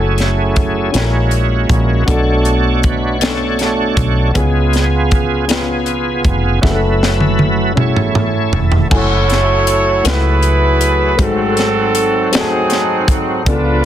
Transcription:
0.00 0.90 F#1 medium
0.00 0.91 F#3 soft
0.00 0.91 A3 soft
0.00 0.71 C#4 medium
0.00 0.91 C#4 medium
0.00 0.71 E4 medium
0.00 0.91 E4 medium
0.00 0.72 F#4 medium
0.00 0.87 G#4 medium
0.00 0.76 A4 medium
0.18 snare soft
0.18 closed hi-hat soft
0.56 kick medium
0.56 closed hi-hat soft
0.88 1.85 C#4 soft
0.88 0.94 G#4 medium
0.93 1.66 A#1 medium
0.93 2.03 A#2 soft
0.93 2.04 G#3 soft
0.93 2.04 A#3 soft
0.93 2.04 C#4 soft
0.93 1.85 E4 soft
0.93 2.04 E4 soft
0.93 1.86 F#4 soft
0.93 1.68 F#4 medium
0.93 1.01 A4 soft
0.93 snare medium
0.93 closed hi-hat medium
1.00 1.89 A#4 medium
1.31 closed hi-hat soft
1.69 2.04 A#1 medium
1.69 2.07 F#4 medium
1.69 kick medium
1.69 closed hi-hat soft
2.06 3.94 B1 medium
2.06 3.17 B2 soft
2.06 4.31 A3 soft
2.06 2.99 B3 medium
2.06 3.00 D4 medium
2.06 3.18 D4 medium
2.06 3.00 F#4 medium
2.06 3.18 F#4 medium
2.06 2.86 A4 medium
2.06 3.00 A4 medium
2.06 4.31 C#5 soft
2.06 kick medium
2.06 closed hi-hat medium
2.45 closed hi-hat soft
2.83 3.23 B4 medium
2.83 kick medium
2.83 closed hi-hat soft
3.21 4.14 B3 medium
3.21 3.28 C#4 soft
3.21 4.31 D4 medium
3.21 4.31 F#4 medium
3.21 4.14 F#4 soft
3.21 3.97 A4 medium
3.21 4.14 A4 medium
3.21 snare medium
3.21 closed hi-hat medium
3.28 4.17 D4 soft
3.59 snare soft
3.59 closed hi-hat soft
3.97 4.32 B1 medium
3.97 4.37 A4 medium
3.97 kick medium
3.97 closed hi-hat soft
4.34 6.22 C#2 loud
4.34 5.46 C#3 medium
4.34 4.85 G#3 soft
4.34 5.45 B3 medium
4.34 5.27 B3 medium
4.34 5.27 C#4 medium
4.34 5.45 F4 medium
4.34 5.28 F4 medium
4.34 5.49 G#4 medium
4.34 5.28 G#4 medium
4.34 kick medium
4.34 closed hi-hat medium
4.73 snare soft
4.73 closed hi-hat soft
5.11 kick medium
5.11 closed hi-hat soft
5.47 6.41 B3 medium
5.47 6.60 B3 medium
5.47 6.41 C#4 soft
5.47 6.41 F4 soft
5.47 6.60 F4 medium
5.47 6.60 G#4 medium
5.47 6.42 B4 medium
5.47 snare medium
5.47 closed hi-hat medium
5.86 closed hi-hat soft
6.25 6.60 F1 medium
6.25 kick medium
6.25 closed hi-hat soft
6.61 8.49 F#1 medium
6.61 7.72 F#3 medium
6.61 7.73 A3 soft
6.61 7.55 C#4 medium
6.61 7.73 E4 medium
6.61 7.55 E4 medium
6.61 7.56 F#4 medium
6.61 6.70 G#4 medium
6.61 7.73 B4 medium
6.61 kick medium
6.61 snare soft
6.71 7.59 A4 medium
7.03 snare medium
7.21 high tom soft
7.39 high tom medium
7.75 8.88 A3 medium
7.75 8.69 C#4 medium
7.75 8.69 E4 soft
7.75 8.88 E4 medium
7.75 8.69 F#4 soft
7.75 8.70 G#4 medium
7.75 mid tom medium
7.80 8.60 C#5 medium
7.96 mid tom medium
8.15 mid tom medium
8.52 8.88 E1 medium
8.52 floor tom medium
8.72 floor tom medium
8.90 10.01 F#1 medium
8.90 11.15 F#3 medium
8.90 8.98 G#3 soft
8.90 9.83 A3 medium
8.90 9.83 E4 medium
8.90 11.16 E4 medium
8.90 10.02 E4 medium
8.90 9.83 F#4 medium
8.90 11.15 F#4 medium
8.90 10.02 A4 medium
8.90 9.84 G#5 medium
8.90 kick loud
8.90 crash medium
8.95 11.19 A3 medium
8.95 10.03 C#5 loud
9.30 snare soft
9.30 closed hi-hat soft
9.67 closed hi-hat medium
10.03 11.19 C#2 medium
10.03 10.96 A3 medium
10.03 10.97 E4 medium
10.03 10.97 F#4 medium
10.03 11.16 G#4 medium
10.03 10.97 B4 medium
10.03 closed hi-hat medium
10.07 11.16 E4 medium
10.07 11.21 B4 medium
10.07 snare medium
10.42 closed hi-hat soft
10.81 closed hi-hat medium
11.17 12.32 G#1 loud
11.17 12.29 G#2 medium
11.17 13.43 F#3 medium
11.17 12.11 G#3 medium
11.17 12.10 A3 medium
11.17 12.11 C4 medium
11.17 13.43 C4 medium
11.17 12.11 F#4 medium
11.17 13.43 F#4 medium
11.17 kick loud
11.17 closed hi-hat medium
11.22 12.30 C4 medium
11.22 12.30 F#4 medium
11.22 12.35 A4 loud
11.57 snare soft
11.57 closed hi-hat soft
11.95 closed hi-hat medium
12.31 13.43 D#2 medium
12.31 13.24 A3 medium
12.31 13.25 C4 medium
12.31 13.25 F#4 medium
12.31 12.40 G#4 medium
12.31 snare loud
12.31 closed hi-hat medium
12.36 13.44 C4 medium
12.36 13.45 D#4 medium
12.36 13.16 G#4 medium
12.40 13.29 A5 medium
12.70 snare soft
12.70 closed hi-hat soft
13.08 kick medium
13.08 closed hi-hat medium
13.46 13.85 C#2 loud
13.46 13.85 C#3 medium
13.46 13.85 F3 medium
13.46 13.85 B3 medium
13.46 13.85 D4 medium
13.46 13.85 F4 medium
13.46 13.85 A4 medium
13.46 13.85 B4 loud
13.46 kick loud
13.46 closed hi-hat medium

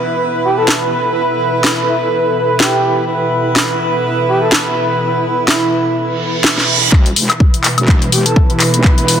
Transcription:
0.00 6.88 B2 medium
0.00 6.88 E3 medium
0.00 3.06 B3 medium
0.00 3.06 E4 medium
0.00 6.88 E4 medium
0.00 9.20 E4 medium
0.00 6.88 A4 medium
0.00 3.06 B4 medium
0.00 9.20 B4 medium
0.00 9.20 E5 medium
0.00 9.20 B5 medium
0.44 0.55 G4 medium
0.58 0.70 A4 medium
0.68 snare loud
1.64 snare loud
1.88 1.97 E4 medium
2.02 2.08 E4 medium
2.60 2.98 G4 medium
2.60 snare loud
3.08 6.90 B3 medium
3.08 6.90 E4 medium
3.08 6.90 B4 medium
3.56 snare loud
4.28 4.39 G4 medium
4.42 4.54 A4 medium
4.52 snare loud
5.48 5.96 E4 medium
5.48 snare loud
5.96 reverse cymbal medium
6.44 snare loud
6.58 snare soft
6.92 7.28 E1 medium
6.92 9.20 B2 medium
6.92 9.20 E3 medium
6.92 9.20 E4 medium
6.92 9.20 B4 medium
6.92 kick loud
6.92 clap soft
6.92 riser medium
7.06 closed hi-hat soft
7.16 open hi-hat loud
7.30 clap soft
7.30 closed hi-hat medium
7.30 high woodblock medium
7.40 kick loud
7.54 closed hi-hat medium
7.64 clap soft
7.64 open hi-hat medium
7.78 7.87 E1 medium
7.78 closed hi-hat medium
7.78 high woodblock medium
7.88 8.24 E1 loud
7.88 kick loud
7.88 clap medium
8.02 closed hi-hat soft
8.12 8.23 G4 medium
8.12 open hi-hat loud
8.26 8.38 A4 medium
8.26 closed hi-hat medium
8.36 kick loud
8.50 9.20 B3 medium
8.50 9.20 E4 medium
8.50 9.20 B4 medium
8.50 closed hi-hat soft
8.60 clap medium
8.60 open hi-hat medium
8.74 9.20 E1 medium
8.74 closed hi-hat medium
8.84 kick loud
8.84 clap medium
8.98 closed hi-hat soft
9.08 open hi-hat loud

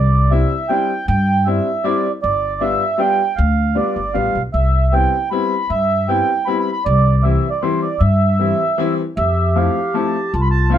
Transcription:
0.00 0.42 C2 loud
0.00 0.32 D5 medium
0.31 0.51 G3 soft
0.31 0.52 C4 soft
0.31 0.52 D4 soft
0.31 0.52 E4 medium
0.31 0.70 E5 medium
0.69 0.90 G3 medium
0.69 0.90 C4 medium
0.69 0.90 D4 soft
0.69 0.90 E4 medium
0.69 1.06 G5 medium
1.08 1.58 G2 loud
1.08 1.47 G5 loud
1.45 1.67 G3 medium
1.45 1.67 C4 medium
1.45 1.67 D4 soft
1.45 1.67 E4 medium
1.45 1.85 E5 medium
1.84 2.05 G3 medium
1.84 2.05 C4 medium
1.84 2.05 D4 soft
1.84 2.05 E4 medium
1.84 2.12 D5 medium
2.22 2.73 G1 medium
2.22 2.62 D5 medium
2.61 2.81 G3 soft
2.61 2.81 B3 medium
2.61 2.81 D4 medium
2.61 2.82 F4 medium
2.61 3.00 E5 loud
2.98 3.19 G3 medium
2.98 3.19 B3 medium
2.98 3.19 D4 medium
2.98 3.19 F4 medium
2.98 3.39 G5 medium
3.36 3.77 D2 loud
3.36 3.77 F5 medium
3.75 3.96 G3 medium
3.75 3.96 B3 soft
3.75 3.96 D4 soft
3.75 3.97 F4 medium
3.75 4.16 D5 medium
3.96 4.13 G1 medium
4.14 4.34 A1 medium
4.14 4.35 G3 medium
4.14 4.35 B3 soft
4.14 4.35 D4 soft
4.14 4.36 F4 medium
4.14 4.42 F5 medium
4.35 4.52 B1 medium
4.54 5.05 C2 medium
4.54 4.94 E5 medium
4.92 5.13 G3 soft
4.92 5.13 B3 soft
4.92 5.14 C4 soft
4.92 5.14 E4 medium
4.92 5.29 G5 medium
5.31 5.52 G3 medium
5.31 5.52 B3 soft
5.31 5.53 C4 medium
5.31 5.53 E4 medium
5.31 5.71 B5 medium
5.70 6.20 G2 medium
5.70 6.10 E5 loud
6.08 6.29 G3 medium
6.08 6.29 B3 soft
6.08 6.29 C4 soft
6.08 6.29 E4 medium
6.08 6.48 G5 medium
6.46 6.67 G3 medium
6.46 6.67 B3 soft
6.46 6.67 C4 medium
6.46 6.68 E4 medium
6.46 6.58 B5 medium
6.60 6.71 B5 medium
6.72 6.84 B5 loud
6.85 7.36 C2 loud
6.85 7.25 D5 loud
7.23 7.44 E3 medium
7.23 7.44 G3 soft
7.23 7.44 C4 soft
7.23 7.44 E4 medium
7.23 7.49 E5 medium
7.50 7.63 D5 medium
7.62 7.83 E3 medium
7.62 7.83 G3 medium
7.62 7.83 C4 medium
7.62 7.83 E4 medium
7.62 7.81 C5 medium
7.82 8.01 D5 medium
7.99 8.51 G2 medium
7.99 8.94 E5 medium
8.39 8.60 E3 soft
8.39 8.60 G3 soft
8.39 8.60 C4 soft
8.39 8.61 E4 medium
8.78 8.99 E3 medium
8.78 8.99 G3 medium
8.78 8.99 C4 medium
8.78 8.99 E4 medium
9.17 9.68 F2 loud
9.17 10.35 G4 medium
9.17 9.57 E5 medium
9.56 9.76 F3 medium
9.56 9.77 A3 soft
9.56 9.77 C4 soft
9.56 9.77 E4 medium
9.56 9.96 F5 medium
9.94 10.15 F3 soft
9.94 10.15 A3 soft
9.94 10.15 C4 medium
9.94 10.15 E4 medium
9.94 10.33 A5 medium
10.34 10.78 C2 medium
10.34 10.78 F4 medium
10.34 10.41 A5 medium
10.41 10.48 B5 medium
10.51 10.73 A5 loud
10.70 10.78 F3 medium
10.70 10.78 A3 medium
10.70 10.78 C4 soft
10.70 10.78 E4 medium
10.70 10.78 F5 medium

